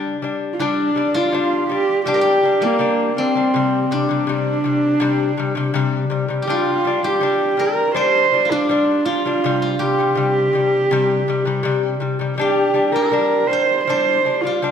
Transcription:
Already playing: lute G3 D4
0.22 lute G3 D4
0.54 horsehead fiddle F4
0.59 lute G3 D4, guzheng D4, horsehead fiddle D4
0.96 lute G3 D4
1.14 lute G3 D4, guzheng F4, horsehead fiddle F4
1.32 lute G3 D4
1.69 lute G3 D4, horsehead fiddle G4
2.06 lute G3 D4, horsehead fiddle G4, guzheng G4
2.14 guzheng A#4
2.21 guzheng G4
2.43 lute G3 D4
2.61 lute G3 D4, guzheng A#3, horsehead fiddle A#3
2.79 lute G3 D4
3.17 lute G3 D4, guzheng C4, horsehead fiddle C4
3.35 lute G3 D4
3.54 lute C3 G3
3.91 lute C3 G3, guzheng D4, horsehead fiddle D4
4.09 lute C3 G3
4.27 lute C3 G3
4.64 lute C3 G3
5.00 lute C3 G3
5.37 lute C3 G3
5.55 lute C3 G3
5.74 lute C3 G3
6.10 lute C3 G3
6.28 lute C3 G3
6.42 guzheng G4, horsehead fiddle G4
6.47 lute G3 D4, guzheng F4
6.52 horsehead fiddle F4
6.85 lute G3 D4
7.03 lute G3 D4, guzheng G4, horsehead fiddle G4
7.21 lute G3 D4
7.57 lute G3 D4, guzheng A#4, horsehead fiddle A#4
7.94 lute G3 D4, horsehead fiddle C5, guzheng C5
8.32 lute G3 D4
8.45 guzheng F4
8.50 lute G3 D4, horsehead fiddle D4, guzheng D4
8.69 lute G3 D4
9.05 lute G3 D4, guzheng F4, horsehead fiddle F4
9.25 lute G3 D4
9.44 lute C3 G3
9.62 guzheng F4
9.79 lute C3 G3, guzheng G4, horsehead fiddle G4
9.98 lute C3 G3
10.15 lute C3 G3
10.53 lute C3 G3
10.91 lute C3 G3
11.28 lute C3 G3
11.45 lute C3 G3
11.63 lute C3 G3
12.00 lute C3 G3
12.19 lute C3 G3
12.38 lute G3 D4, horsehead fiddle G4, guzheng G4
12.74 lute G3 D4
12.92 lute G3 D4, horsehead fiddle A#4
12.96 guzheng A#4
13.11 lute G3 D4
13.47 lute G3 D4, horsehead fiddle C5
13.53 guzheng C5
13.84 lute G3, horsehead fiddle C5
13.89 lute D4, guzheng C5
14.25 lute G3 D4
14.41 lute G3 D4, horsehead fiddle F4
14.47 guzheng F4
14.62 lute G3 D4

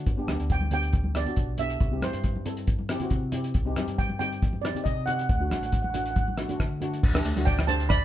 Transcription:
0.06 fingered electric bass G1, kick, closed hi-hat
0.17 steel pan B3 D4 G4
0.27 fingered electric bass D2, steel pan B3 D4 G4, cross-stick, closed hi-hat, high conga
0.40 fingered electric bass D2, closed hi-hat
0.50 steel pan G5, kick, closed hi-hat
0.61 high conga
0.71 steel pan B3 D4 G4 G5, closed hi-hat, low conga
0.83 closed hi-hat
0.93 kick, closed hi-hat
1.04 high conga
1.14 steel pan B3 D4 G4 D5, cross-stick, closed hi-hat
1.25 steel pan B3 D4 F#4, closed hi-hat, low conga
1.36 fingered electric bass B1, kick, closed hi-hat
1.58 steel pan B3 D4 G4 E5, closed hi-hat, low conga
1.70 closed hi-hat
1.80 fingered electric bass C2, kick, closed hi-hat
1.91 steel pan C4 E4 G4
2.01 fingered electric bass G2, steel pan C4 E4 G4 C5, cross-stick, closed hi-hat, high conga
2.13 fingered electric bass G2, closed hi-hat
2.24 kick, closed hi-hat
2.36 high conga
2.45 steel pan C4 E4 A4, closed hi-hat, low conga
2.57 closed hi-hat
2.67 kick, closed hi-hat
2.79 high conga
2.89 steel pan C4 E4 G4, cross-stick, closed hi-hat
3.00 steel pan C4 E4 F#4, closed hi-hat, low conga
3.10 fingered electric bass C3, kick, closed hi-hat
3.32 steel pan C4 E4 G4, closed hi-hat, low conga
3.44 closed hi-hat
3.54 fingered electric bass C2, kick, closed hi-hat
3.66 steel pan C4 D#4 G4
3.76 fingered electric bass G2, steel pan C4 D#4 G4, cross-stick, closed hi-hat, high conga
3.88 fingered electric bass G2, closed hi-hat
3.98 steel pan G5, kick, closed hi-hat
4.09 high conga
4.19 steel pan C4 D#4 G4 G5, closed hi-hat, low conga
4.33 closed hi-hat
4.42 kick, closed hi-hat
4.53 high conga
4.62 steel pan C4 D#4 G4 D5, cross-stick, closed hi-hat
4.75 steel pan C4 D#4 G4, closed hi-hat, low conga
4.84 fingered electric bass C3, steel pan D#5, kick, closed hi-hat
5.06 steel pan C4 D#4 G4 F#5, closed hi-hat, low conga
5.19 steel pan F#5, closed hi-hat
5.29 fingered electric bass D2, steel pan F#5, kick, closed hi-hat
5.36 steel pan F#5
5.40 steel pan A3 D4 F#4 F#5
5.50 fingered electric bass A1, steel pan A3 D4 F#4 F#5, cross-stick, closed hi-hat, high conga
5.57 fingered electric bass A1, steel pan F#5
5.63 steel pan F#5, closed hi-hat
5.72 kick, closed hi-hat
5.82 steel pan F#5, high conga
5.90 steel pan A3 F#5
5.94 steel pan D4 F#4 F#5, closed hi-hat, low conga
6.04 steel pan F#5, closed hi-hat
6.11 steel pan F#5
6.16 steel pan F#5, kick, closed hi-hat, high conga
6.28 high conga
6.37 steel pan A3 D4 F#4, cross-stick, closed hi-hat
6.48 steel pan A3 D4 F#4, closed hi-hat, low conga
6.60 fingered electric bass D3, kick, cross-stick, closed hi-hat
6.80 steel pan A3 D4 F#4, closed hi-hat, low conga
6.94 closed hi-hat
7.03 fingered electric bass D2, kick, crash
7.14 steel pan A3 D4 G4, cross-stick
7.25 fingered electric bass D2, closed hi-hat
7.36 fingered electric bass D2, steel pan A3 D4 F#4, closed hi-hat, high conga
7.45 steel pan D5 G5, kick, closed hi-hat
7.59 cross-stick
7.67 steel pan A3 D4 G4 C5 A5, closed hi-hat, low conga
7.80 closed hi-hat
7.89 steel pan D5 B5, kick, cross-stick, closed hi-hat

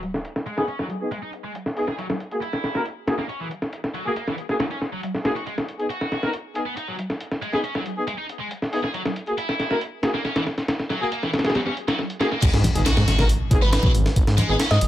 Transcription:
Already playing: sub drop
0.03 closed hi-hat
0.14 snare
0.25 closed hi-hat
0.36 snare
0.46 distorted electric guitar G#3, closed hi-hat
0.58 distorted electric guitar B3, brass ensemble B3 D#4 G#4, snare
0.68 distorted electric guitar C#4, closed hi-hat
0.79 distorted electric guitar F#3, snare
0.90 closed hi-hat
1.01 brass ensemble B3 D#4 G#4
1.11 distorted electric guitar G#3, closed hi-hat
1.23 distorted electric guitar D#4
1.33 closed hi-hat
1.44 distorted electric guitar G#3
1.55 closed hi-hat
1.66 snare
1.77 brass ensemble B3 D#4 G#4, open hi-hat
1.88 distorted electric guitar G#4, snare
1.99 distorted electric guitar F#3, closed hi-hat
2.10 snare
2.20 closed hi-hat
2.31 brass ensemble A#3 F#4 G#4, closed hi-hat
2.42 distorted electric guitar E4, closed hi-hat
2.53 snare
2.64 snare, closed hi-hat
2.75 brass ensemble A#3 F#4 A#4, snare
2.86 closed hi-hat
3.07 brass ensemble A#3 F#4 G#4, snare, closed hi-hat
3.18 distorted electric guitar A#3, snare
3.29 distorted electric guitar C#4, closed hi-hat
3.40 distorted electric guitar E3
3.51 closed hi-hat
3.62 snare
3.73 closed hi-hat
3.84 snare
3.94 distorted electric guitar F#3, closed hi-hat
4.06 distorted electric guitar A#3, brass ensemble A#3 F#4 G#4
4.16 distorted electric guitar A#3, closed hi-hat
4.28 distorted electric guitar E3, snare
4.38 closed hi-hat
4.49 brass ensemble A#3 F#4 G#4, snare
4.60 distorted electric guitar F#3, snare
4.71 distorted electric guitar C#4, closed hi-hat
4.82 snare
4.93 distorted electric guitar F#3
5.03 closed hi-hat
5.15 snare
5.25 brass ensemble A#3 F#4 G#4, snare
5.36 distorted electric guitar F#4, closed hi-hat
5.46 distorted electric guitar G#3, closed hi-hat
5.58 snare
5.68 closed hi-hat
5.80 brass ensemble B3 D#4 G#4, closed hi-hat
5.90 distorted electric guitar F#4, closed hi-hat
6.01 snare
6.12 snare, closed hi-hat
6.23 brass ensemble B3 D#4 A#4, snare
6.33 closed hi-hat
6.55 brass ensemble B3 D#4 G#4, closed hi-hat
6.66 distorted electric guitar B3
6.77 distorted electric guitar D#4, closed hi-hat
6.88 distorted electric guitar F#3
6.99 closed hi-hat
7.10 snare
7.21 closed hi-hat
7.32 snare
7.42 distorted electric guitar G#3, closed hi-hat
7.53 brass ensemble B3 D#4 G#4, distorted electric guitar B3, snare
7.64 distorted electric guitar C#4, closed hi-hat
7.75 distorted electric guitar F#3, snare
7.86 closed hi-hat
7.97 brass ensemble B3 D#4 G#4
8.07 distorted electric guitar G#3, closed hi-hat
8.18 distorted electric guitar D#4
8.29 closed hi-hat
8.40 distorted electric guitar G#3
8.51 closed hi-hat
8.62 snare
8.72 brass ensemble B3 D#4 G#4, open hi-hat
8.84 distorted electric guitar G#4, snare
8.94 distorted electric guitar F#3, closed hi-hat
9.05 snare
9.16 closed hi-hat
9.27 brass ensemble A#3 F#4 G#4, closed hi-hat
9.38 distorted electric guitar E4, closed hi-hat
9.49 snare
9.60 snare, closed hi-hat
9.71 brass ensemble A#3 F#4 A#4, snare
9.81 closed hi-hat
10.03 brass ensemble A#3 F#4 G#4, snare, closed hi-hat
10.14 distorted electric guitar A#3, snare
10.25 distorted electric guitar C#4, snare, closed hi-hat
10.36 distorted electric guitar E3, snare, closed hi-hat
10.47 snare
10.58 snare, closed hi-hat
10.68 snare, closed hi-hat
10.80 snare
10.90 distorted electric guitar F#3, snare, closed hi-hat
11.01 distorted electric guitar A#3, brass ensemble A#3 F#4 G#4
11.12 distorted electric guitar A#3, closed hi-hat
11.23 distorted electric guitar E3, snare
11.34 snare, closed hi-hat
11.39 snare, closed hi-hat
11.45 brass ensemble A#3 F#4 G#4, snare, closed hi-hat
11.50 snare, closed hi-hat
11.55 distorted electric guitar F#3, snare, closed hi-hat
11.66 distorted electric guitar C#4, snare
11.77 closed hi-hat
11.88 distorted electric guitar F#3, snare, closed hi-hat
11.99 snare
12.10 closed hi-hat
12.20 distorted electric guitar A#3, brass ensemble A#3 F#4 G#4, snare, closed hi-hat
12.32 distorted electric guitar A#3, snare
12.42 detuned saw bass G#1, distorted electric guitar G#3, kick, closed hi-hat, crash, impact
12.54 detuned saw bass G#2, snare
12.64 closed hi-hat, high conga
12.75 detuned saw bass G#1, brass ensemble B3 D#4 G#4, closed hi-hat
12.86 distorted electric guitar F#4, snare, closed hi-hat
12.97 detuned saw bass G#2, snare
13.08 detuned saw bass G#1, snare, closed hi-hat
13.19 brass ensemble B3 D#4 A#4, snare, high conga, low conga
13.29 closed hi-hat
13.51 detuned saw bass G#1, brass ensemble B3 D#4 G#4, kick, closed hi-hat, low conga
13.62 distorted electric guitar B3, synth pluck B4
13.72 distorted electric guitar D#4, synth pluck B4, snare, closed hi-hat
13.83 detuned saw bass B1, distorted electric guitar F#3, kick, high conga
13.94 detuned saw bass G#1, closed hi-hat
14.06 snare
14.16 detuned saw bass G#1, kick, closed hi-hat
14.27 detuned saw bass G#2, snare
14.38 distorted electric guitar G#3, closed hi-hat, high conga
14.49 detuned saw bass G#1, distorted electric guitar B3, brass ensemble B3 D#4 G#4
14.59 distorted electric guitar C#4, snare, closed hi-hat
14.71 detuned saw bass G#2, distorted electric guitar F#3, synth pluck D#5, snare
14.81 detuned saw bass G#1, closed hi-hat

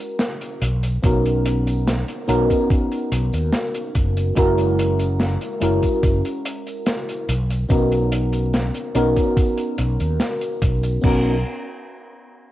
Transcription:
Already playing: fm electric piano G#3 C#4 E4 F#4 A#4
0.19 snare, closed hi-hat, tambourine
0.41 closed hi-hat, tambourine
0.62 fretless electric bass B1, closed hi-hat
0.83 closed hi-hat, tambourine
1.02 fretless electric bass B1, fm electric piano B3 C#4 D#4 F#4 A#4, kick, closed hi-hat, tambourine
1.25 closed hi-hat, tambourine
1.45 closed hi-hat
1.67 closed hi-hat, tambourine
1.87 snare, closed hi-hat, tambourine
2.08 closed hi-hat, tambourine
2.28 fretless electric bass B1, fm electric piano B3 C#4 D#4 F#4 A#4, closed hi-hat
2.50 kick, closed hi-hat, tambourine
2.70 kick, closed hi-hat, tambourine
2.91 closed hi-hat, tambourine
3.12 fretless electric bass B1, closed hi-hat
3.33 fretless electric bass D#2, closed hi-hat, tambourine
3.53 snare, closed hi-hat, tambourine
3.75 closed hi-hat, tambourine
3.95 fretless electric bass F#1, kick, closed hi-hat
4.16 closed hi-hat, tambourine
4.35 fretless electric bass F#1, fm electric piano G#3 C#4 E4 F#4 A#4, kick, closed hi-hat, tambourine
4.58 closed hi-hat, tambourine
4.79 closed hi-hat
4.99 closed hi-hat, tambourine
5.19 snare, closed hi-hat, tambourine
5.41 closed hi-hat, tambourine
5.60 fretless electric bass F#1, fm electric piano G#3 C#4 E4 F#4 A#4, closed hi-hat
5.83 kick, closed hi-hat, tambourine
6.03 fretless electric bass F#1, kick, closed hi-hat, tambourine
6.25 closed hi-hat, tambourine
6.46 closed hi-hat
6.67 closed hi-hat, tambourine
6.86 snare, closed hi-hat, tambourine
7.08 closed hi-hat, tambourine
7.28 fretless electric bass B1, closed hi-hat
7.50 closed hi-hat, tambourine
7.69 fretless electric bass B1, fm electric piano B3 C#4 D#4 F#4 A#4, kick, closed hi-hat, tambourine
7.92 closed hi-hat, tambourine
8.12 closed hi-hat
8.33 closed hi-hat, tambourine
8.53 snare, closed hi-hat, tambourine
8.74 closed hi-hat, tambourine
8.95 fretless electric bass B1, fm electric piano B3 C#4 D#4 F#4 A#4, closed hi-hat
9.16 kick, closed hi-hat, tambourine
9.37 kick, closed hi-hat, tambourine
9.57 closed hi-hat, tambourine
9.78 fretless electric bass B1, closed hi-hat
10.00 fretless electric bass D#2, closed hi-hat, tambourine
10.20 snare, closed hi-hat, tambourine
10.41 closed hi-hat, tambourine
10.62 fretless electric bass B1, kick, closed hi-hat
10.83 closed hi-hat, tambourine
11.01 fretless electric bass B1, fm electric piano B3 C#4 D#4 F#4, kick, crash
11.06 fm electric piano A#4

